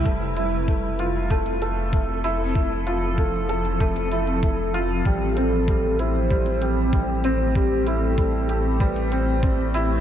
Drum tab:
HH |x-x-x-x-xxx---x-|x-x-x-xxxxxx--x-|x-x-x-x-xxx---x-|x-x-x-x-xxx---x-|
BD |o---o---o---o---|o---o---o---o---|o---o---o---o---|o---o---o---o---|